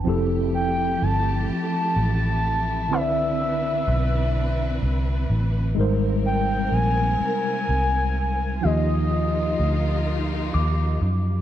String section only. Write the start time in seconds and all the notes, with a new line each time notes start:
0.04 F3 A3 E4 G4
2.89 C4 D4 B4
5.75 C3 A#3 C4 A#4
8.62 A#3 D#4 F4 G4